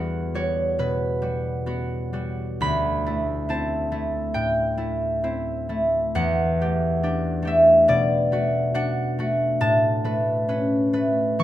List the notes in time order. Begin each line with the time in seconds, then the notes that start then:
Already playing: E2 G3 B3 F#4 D5 E5
0.35 G3 F#4 C#5
0.79 B2 B4
1.22 G3 F#4
1.66 B3 F#4
2.13 G3 F#4
2.61 D2 B5
3.06 A3 E4
3.49 C4 E4 A5
3.92 A3 E4
4.34 A2 G5
4.77 A3 E4
5.24 C4 E4
5.69 A3 E4
6.15 E2 F#5
6.61 A3 G4
7.03 D4 G4
7.42 A3 G4
7.47 E5
7.88 B2 D5
8.32 A3 F#4
8.74 D4 F#4 F#5
9.19 A3 F#4
9.61 A2 A5
10.04 A3 B4
10.49 C#4 B4
10.93 A3 B4
11.39 E3 C#6